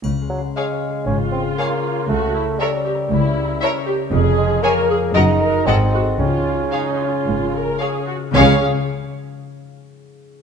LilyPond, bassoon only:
\new Staff \with { instrumentName = "Bassoon" } { \time 4/4 \key des \major \tempo 4 = 116 r8 ges8 aes4 des'8 c'8 bes4 | a4 g2~ g8 r8 | r8 aes8 bes4 ees'4 c'4 | des'2.~ des'8 r8 |
des'8 r2. r8 | }